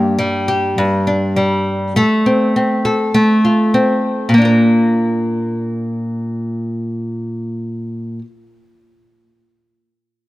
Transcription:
0.00 0.77 G2 medium
0.00 2.03 A#3 soft
0.00 0.47 G4 medium
0.19 1.35 G3 medium
0.48 1.97 G4 medium
0.78 2.03 G2 medium
1.07 2.02 D4 soft
1.36 1.96 G3 medium
1.96 3.13 A3 medium
1.96 2.84 A4 medium
2.26 2.55 C4 soft
2.56 3.73 C4 medium
2.85 4.40 A4 medium
3.14 4.34 A3 medium
3.45 4.41 F4 soft
3.74 4.38 C4 medium
4.29 8.19 A#2 medium
4.34 8.21 A#3 medium
4.38 8.23 D4 medium
4.38 8.25 F4 medium
4.45 8.27 A#4 medium

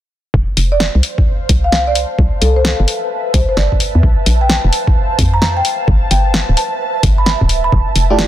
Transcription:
0.34 0.46 F1 loud
0.34 2.19 C5 medium
0.34 kick loud
0.57 0.90 F1 medium
0.57 open hi-hat loud
0.72 0.77 D5 medium
0.72 2.19 F5 medium
0.80 snare loud
0.95 1.01 C2 medium
1.03 open hi-hat medium
1.18 8.28 A5 medium
1.18 kick medium
1.49 2.05 C2 medium
1.49 kick loud
1.49 open hi-hat loud
1.64 1.70 F5 medium
1.72 1.82 F5 medium
1.72 snare loud
1.87 2.06 D5 medium
1.95 open hi-hat medium
2.18 2.30 C2 loud
2.18 4.03 B4 medium
2.18 kick loud
2.34 4.03 E5 medium
2.41 2.75 C2 medium
2.41 2.54 A4 medium
2.41 open hi-hat medium
2.56 2.75 C5 medium
2.65 snare loud
2.80 2.86 G1 medium
2.88 open hi-hat medium
3.34 3.46 C2 medium
3.34 3.44 C5 medium
3.34 kick loud
3.34 open hi-hat loud
3.49 3.54 C5 medium
3.57 3.69 G1 medium
3.57 3.95 D5 medium
3.57 snare loud
3.72 kick medium
3.80 open hi-hat medium
3.95 4.01 E2 medium
4.03 4.15 A#1 medium
4.03 5.65 C5 medium
4.03 kick loud
4.24 4.59 A#1 medium
4.24 5.65 F5 medium
4.24 open hi-hat medium
4.41 4.46 G5 medium
4.50 snare loud
4.64 4.71 F1 medium
4.73 open hi-hat medium
4.87 kick loud
5.19 5.62 F2 medium
5.19 kick loud
5.19 open hi-hat loud
5.34 5.39 A#5 medium
5.42 5.51 A#5 medium
5.42 snare loud
5.57 5.71 G5 medium
5.65 7.72 B4 medium
5.65 open hi-hat medium
5.88 6.00 G1 loud
5.88 kick loud
6.03 7.72 E5 medium
6.11 6.44 G1 medium
6.11 6.55 G5 medium
6.11 open hi-hat medium
6.34 snare loud
6.49 6.55 D1 medium
6.57 6.78 A5 medium
6.57 open hi-hat medium
7.03 7.36 G1 loud
7.03 kick loud
7.03 open hi-hat medium
7.18 7.23 B5 medium
7.26 7.36 B5 medium
7.26 snare loud
7.41 7.70 D1 medium
7.41 kick medium
7.49 open hi-hat medium
7.64 7.78 B5 medium
7.72 7.84 F1 loud
7.72 8.28 C5 medium
7.72 kick loud
7.96 8.28 F1 medium
7.96 open hi-hat medium
8.10 8.26 A3 medium
8.10 8.26 E4 medium
8.10 8.26 F4 medium
8.10 8.26 G4 medium
8.10 8.16 D5 medium
8.19 snare loud

